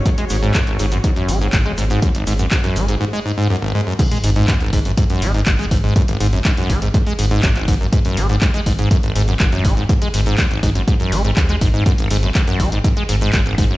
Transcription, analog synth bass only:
0.30 G#1
0.79 G#1
1.29 G#1
1.53 G#1
1.78 G#1
2.27 G#1
2.76 G#1
4.24 G#1
4.73 G#1
5.22 G#1
5.47 G#1
5.71 G#1
6.20 G#1
6.70 G#1
7.19 G#1
7.43 G#1
7.68 G#1
8.17 G#1
8.66 G#1
9.16 G#1
9.40 G#1
9.65 G#1
10.14 G#1
10.63 G#1
11.12 G#1
11.37 D#2
11.61 G#1
12.11 G#1
12.60 G#1
13.09 G#1
13.34 G#1
13.58 G#1

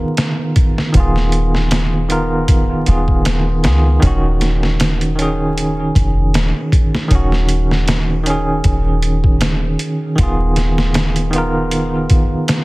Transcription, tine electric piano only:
Already playing: D#3 B3 F4 A#4
0.92 D#3 B3
0.97 F4 G#4
2.09 D#3 B3 F4 A#4
2.86 D#3 B3 F4 G#4
3.63 D#3 B3 F4
3.67 G#4
4.00 D#3 C#4
4.07 F#4
5.15 D#3 C#4
5.22 G#4
7.08 D#3 C#4
7.15 F#4
8.23 D#3 C#4
8.30 G#4
10.16 D#3 B3
10.21 F4 G#4
11.31 D#3 B3
11.36 F4 A#4

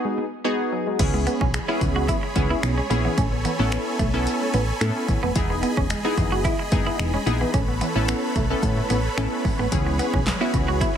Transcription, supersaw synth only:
0.99 G#4 C#5 G#5 B5
3.18 A4 B5
5.36 G#4 D#5
7.54 A4 B4 C#5
9.72 G#4

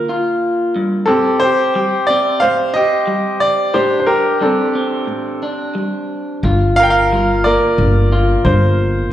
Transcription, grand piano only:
1.06 C4 A4
1.40 C5
2.07 D5
2.40 C5 F5
2.74 D#5
3.40 D5
3.74 G4 C5
4.00 C5
4.07 A#4
4.42 C4 A4
6.76 F5
6.83 G5
6.90 F5
7.44 A#4 D5
8.45 C5

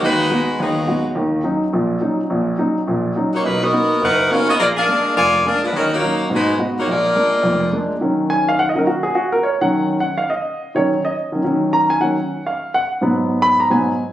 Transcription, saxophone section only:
0.04 G#3 D#4 F#4 B4
0.62 F#3 B3 D#4 G#4
3.34 A#3 D#4 F#4 C#5
3.45 F#3 A#3 D#4 B4
3.63 B3 F#4 A#4 D#5
4.04 D#4 A#4 B4 F#5
4.31 C#4 F#4 A#4 F5
4.49 B3 F#4 A#4 D#5
4.60 A#3 F4 G#4 D5
4.77 D4 G#4 A#4 F5
5.17 F4 A#4 D5 G#5
5.47 D4 G#4 A#4 F5
5.64 G#3 D4 F4 B4
5.76 F#3 C#4 D#4 A#4
5.94 A#3 D#4 F#4 C#5
6.35 G#3 D#4 F#4 B4
6.79 A#3 D#4 F#4 C#5
6.90 A#3 F4 G#4 D5

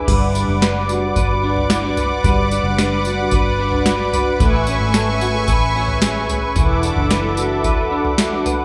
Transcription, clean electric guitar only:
Already playing: D4 G#4
0.07 G3 B4
0.35 D4
0.61 B4
0.89 F#4
1.16 B4
1.43 D4
1.70 E4
1.85 F#4
1.98 B4
2.25 G3 B4
2.52 D4
2.79 B4
3.06 F#4
3.33 B4
3.60 D4
3.86 F#4
4.13 B4
4.41 A3 B4
4.68 C#4
4.94 A4
5.08 B4
5.21 F#4
5.35 G#4
5.48 B4
5.76 C#4
6.02 G#4
6.29 B4
6.56 E3 B4
6.84 D4
7.11 B4
7.38 F#4
7.65 B4
7.91 D4
8.19 F#4
8.46 B4

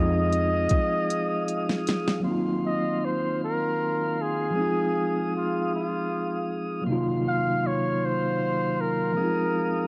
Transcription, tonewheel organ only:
Already playing: G#4 F5 D#6
2.24 D#3 F#3 F5 C6
4.55 G#4 D#6
6.86 D#3 F#3 C6
9.17 G#4 F5 D#6

